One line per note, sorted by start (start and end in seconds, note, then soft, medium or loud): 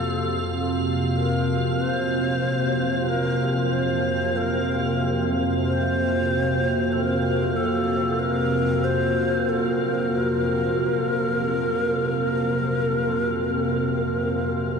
0.00 14.80 F2 medium
0.00 14.80 C3 medium
0.00 14.80 A#3 medium
0.00 14.80 F4 medium
0.00 14.80 F#4 medium
0.00 0.87 A4 medium
0.00 14.80 F5 medium
1.17 1.83 A#4 medium
1.82 3.10 C5 loud
3.09 3.73 A#4 medium
3.71 4.38 C5 medium
4.37 5.38 A#4 medium
5.66 6.94 C5 medium
6.92 7.58 A#4 medium
7.56 8.21 A4 medium
8.19 8.86 A#4 medium
8.70 14.80 C5 medium
8.84 9.51 C5 medium
9.49 9.62 A4 medium
9.62 14.80 A#4 medium